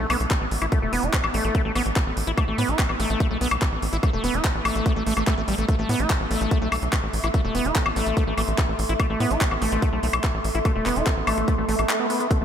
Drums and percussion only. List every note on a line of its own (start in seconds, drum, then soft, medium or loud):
0.10 open hi-hat loud
0.10 high woodblock medium
0.20 closed hi-hat medium
0.31 kick loud
0.31 clap loud
0.31 closed hi-hat medium
0.51 open hi-hat loud
0.62 closed hi-hat medium
0.62 high woodblock soft
0.72 kick loud
0.72 closed hi-hat medium
0.93 open hi-hat loud
1.03 closed hi-hat medium
1.13 kick loud
1.13 clap loud
1.13 closed hi-hat medium
1.24 high woodblock medium
1.34 open hi-hat loud
1.44 closed hi-hat medium
1.55 kick loud
1.55 closed hi-hat medium
1.75 open hi-hat loud
1.75 high woodblock soft
1.86 closed hi-hat medium
1.96 kick loud
1.96 clap loud
1.96 closed hi-hat medium
2.17 open hi-hat loud
2.27 closed hi-hat medium
2.38 kick loud
2.38 closed hi-hat medium
2.38 high woodblock medium
2.58 open hi-hat loud
2.69 closed hi-hat medium
2.79 kick loud
2.79 clap loud
2.79 closed hi-hat medium
2.89 high woodblock soft
3.00 open hi-hat loud
3.10 closed hi-hat medium
3.20 kick loud
3.20 closed hi-hat medium
3.41 open hi-hat loud
3.51 closed hi-hat medium
3.51 high woodblock medium
3.62 kick loud
3.62 clap loud
3.62 closed hi-hat medium
3.82 open hi-hat loud
3.93 closed hi-hat medium
4.03 kick loud
4.03 closed hi-hat medium
4.03 high woodblock soft
4.24 open hi-hat loud
4.34 closed hi-hat medium
4.44 kick loud
4.44 clap loud
4.44 closed hi-hat medium
4.65 open hi-hat loud
4.65 high woodblock medium
4.75 closed hi-hat medium
4.86 kick loud
4.86 closed hi-hat medium
5.06 open hi-hat loud
5.17 closed hi-hat medium
5.17 high woodblock soft
5.27 kick loud
5.27 clap loud
5.27 closed hi-hat medium
5.48 open hi-hat loud
5.58 closed hi-hat medium
5.69 kick loud
5.69 closed hi-hat medium
5.89 open hi-hat loud
6.00 closed hi-hat medium
6.10 kick loud
6.10 clap loud
6.10 closed hi-hat medium
6.10 high woodblock soft
6.31 open hi-hat loud
6.41 closed hi-hat medium
6.51 kick loud
6.51 closed hi-hat medium
6.72 open hi-hat loud
6.72 high woodblock medium
6.82 closed hi-hat medium
6.93 kick loud
6.93 clap loud
6.93 closed hi-hat medium
7.13 open hi-hat loud
7.24 closed hi-hat medium
7.24 high woodblock soft
7.34 kick loud
7.34 closed hi-hat medium
7.55 open hi-hat loud
7.65 closed hi-hat medium
7.75 kick loud
7.75 clap loud
7.75 closed hi-hat medium
7.86 high woodblock medium
7.96 open hi-hat loud
8.06 closed hi-hat medium
8.17 kick loud
8.17 closed hi-hat medium
8.38 open hi-hat loud
8.38 high woodblock soft
8.48 closed hi-hat medium
8.58 kick loud
8.58 clap loud
8.58 closed hi-hat medium
8.79 open hi-hat loud
8.89 closed hi-hat medium
9.00 kick loud
9.00 closed hi-hat medium
9.00 high woodblock medium
9.20 open hi-hat loud
9.31 closed hi-hat medium
9.41 kick loud
9.41 clap loud
9.41 closed hi-hat medium
9.51 high woodblock soft
9.62 open hi-hat loud
9.72 closed hi-hat medium
9.82 kick loud
9.82 closed hi-hat medium
10.03 open hi-hat loud
10.13 closed hi-hat medium
10.13 high woodblock medium
10.24 kick loud
10.24 clap loud
10.24 closed hi-hat medium
10.44 open hi-hat loud
10.55 closed hi-hat medium
10.65 kick loud
10.65 closed hi-hat medium
10.65 high woodblock soft
10.86 clap medium
10.86 open hi-hat loud
10.96 closed hi-hat medium
11.06 kick loud
11.06 clap loud
11.06 closed hi-hat medium
11.27 open hi-hat loud
11.27 high woodblock medium
11.38 closed hi-hat medium
11.48 kick loud
11.48 closed hi-hat medium
11.69 open hi-hat loud
11.79 closed hi-hat medium
11.79 high woodblock soft
11.89 clap loud
11.89 closed hi-hat medium
12.10 open hi-hat loud
12.20 closed hi-hat medium
12.31 kick loud
12.31 closed hi-hat medium